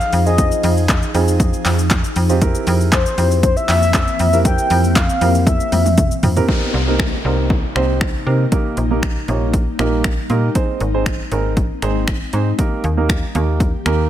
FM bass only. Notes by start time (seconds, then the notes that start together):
0.13 F2
0.64 F2
1.14 F2
1.65 F2
2.16 F2
2.67 F2
3.18 F2
3.69 F2
4.20 F2
4.70 F2
5.21 F2
5.72 F2
6.23 F2
6.74 C2
7.25 C2
7.76 C2
8.27 C3
8.77 A#1
9.28 A#1
9.79 A#1
10.30 A#2
10.81 G#1
11.32 G#1
11.82 G#1
12.33 G#2
12.84 D#2
13.35 D#2
13.86 D#2